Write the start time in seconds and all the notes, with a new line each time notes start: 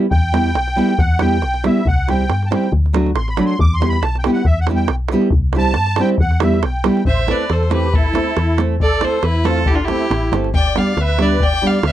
0.11 E2 G5, davul low
0.32 G3 B3 E4 G4, davul high
0.46 davul high
0.55 B1, davul high
0.68 davul high
0.76 G3 B3 E4 G4
0.89 davul high
0.98 E2 F#5, davul low
1.19 G3 B3 E4 G4 G5, davul high
1.33 davul high
1.42 B1, davul high
1.54 davul high
1.64 G3 B3 E4 G4 E5, davul high
1.78 davul high
1.85 C2 F#5, davul low
2.07 G3 C4 E4 G4 G5, davul high
2.21 davul high
2.29 G2, davul high
2.42 A5, davul high
2.51 G3 C4 E4 G4 G5, davul high
2.64 davul high
2.72 D2, davul low
2.86 davul high
2.93 F#3 A3 D4 F#4, davul high
3.06 davul high
3.15 A1 C6, davul high
3.28 B5, davul high
3.37 F#3 A3 D4 F#4, davul high
3.46 C6, davul high
3.59 E2 D6, davul low
3.74 C6
3.80 G3 B3 E4 G4, davul high
3.89 B5, davul high
4.02 B1 A5, davul high
4.15 G5, davul high
4.24 G3 B3 E4 G4 G5, davul high
4.32 F#5
4.37 davul high
4.45 E2 E5, davul low
4.61 F#5
4.67 G3 B3 E4, davul high
4.71 G4
4.75 G5, davul high
4.88 B1, davul high
5.08 G3 B3, davul high
5.13 E4 G4
5.22 davul high
5.30 C2, davul low
5.53 G3 C4 E4 G4, davul high
5.58 A5
5.65 davul high
5.74 G2, davul high
5.86 davul high
5.96 G3 C4, davul high
6.00 E4 G4 G5
6.09 davul high
6.18 E2 F#5, davul low
6.31 davul high
6.40 G3 B3 E4 G4 E5, davul high
6.54 davul high
6.63 B1 G5, davul high
6.84 G3 B3 E4 G4, davul high
6.97 davul high
7.05 A1 C5 E5, davul low
7.19 davul high
7.27 A3 C4 E4 A4 B4 D5, davul high
7.50 E2 A4 C5, davul high
7.63 davul high
7.70 A3 C4 E4 G4 A4 B4, davul high
7.94 A1 E4 A4, davul low
8.06 davul high
8.13 A3 C4 E4 A4, davul high
8.37 E2, davul high
8.58 A3 C4 E4 A4, davul high
8.80 A1 A4 D5, davul low
9.00 A3 C4 E4 A4, davul high
9.05 A4 C5
9.23 E2 E4 B4, davul high
9.35 davul high
9.44 A3 C4 E4 F4 A4, davul high
9.66 A1 E4 G4, davul low
9.75 D4 F4
9.79 davul high
9.83 E4 G4
9.88 A3 C4 E4 A4, davul high
10.01 davul high
10.11 A1, davul high
10.23 davul high
10.32 G1 A3 C4 E4 A4, davul high
10.44 davul high
10.54 G1 D5 G5, davul low
10.66 davul high
10.75 G3 B3 D4 G4 D5 F5, davul high
10.97 D2 B4, davul high
11.01 E5
11.09 davul high
11.19 G3 B3 D4 G4, davul high
11.23 B4 D5
11.39 G1 D5 G5, davul low
11.53 davul high
11.62 G3 B3 D4 G4 D5
11.67 F5
11.83 D2 B4 E5, davul high
11.89 D5